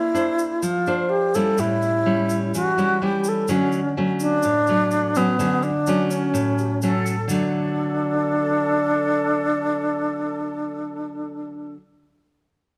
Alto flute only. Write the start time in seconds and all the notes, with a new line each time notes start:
Already playing: E4
0.63 F4
1.09 G4
1.35 A4
1.60 E4
2.56 F#4
3.03 G4
3.29 A4
3.51 C#4
4.21 D4
5.17 B3
5.63 D4
6.11 C#4
7.29 D4